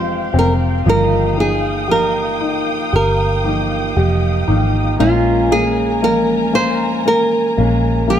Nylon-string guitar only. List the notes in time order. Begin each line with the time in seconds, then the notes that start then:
Already playing: C5
0.39 A#4
0.89 A#4
1.40 G#4
1.91 A#4
2.96 A#4
5.00 F4
5.52 G#4
6.04 A#4
6.55 C5
7.08 A#4
8.10 G#4